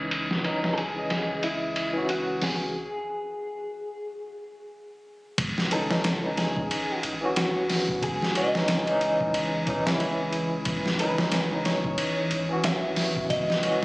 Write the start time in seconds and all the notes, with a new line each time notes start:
Already playing: C#2 E3 C#4 D#4
0.11 ride
0.31 snare
0.43 E3 C#4 D#4, ride
0.63 E3 C#4 D#4, snare
0.74 A4
0.78 G#4, ride
0.94 E3 C#4
0.99 D#5
1.10 snare, ride
1.43 E4, ride
1.76 ride
1.93 E3 C#4
1.98 F#4
2.09 F#4, ride
2.42 G#4, snare, open hi-hat
5.37 C#2 E3 G#5, kick, ride
5.58 snare
5.71 E3 C#4 D#4 A4, ride
5.90 E3 C#4 D#4, snare
6.04 snare, ride
6.22 E3 C#4
6.26 D#4
6.37 G#4, snare, ride
6.57 kick
6.71 ride
7.03 G#1, ride
7.21 E3 C#4
7.25 F#4
7.36 F#4, snare, ride
7.70 snare, open hi-hat
7.89 kick
8.02 C#2 G#4, kick, ride
8.22 snare
8.35 E3 C#4 F#4 D#5, ride
8.55 E3 C#4 D#4, snare
8.68 snare, ride
8.86 E3 C#4, ride
8.91 D#4
9.01 ride
9.20 kick
9.34 ride
9.67 B1 E3 C#4 D#4, kick, ride
9.86 C#2 E3, snare
9.90 E4
10.00 ride
10.33 ride
10.65 C#2, kick, ride
10.86 snare
10.99 E3 C#4 D#4 B4, ride
11.18 E3 C#4 D#4, snare
11.32 snare, ride
11.50 E3 C#4
11.55 D#4
11.65 C#5, snare, ride
11.84 kick
11.98 ride
12.31 G#1, ride
12.49 E3 C#4
12.53 F#4
12.64 E5, snare, ride
12.96 snare, open hi-hat
13.16 kick
13.30 C#2 D#5, kick, ride
13.50 snare
13.63 E3 C#4 F#4, ride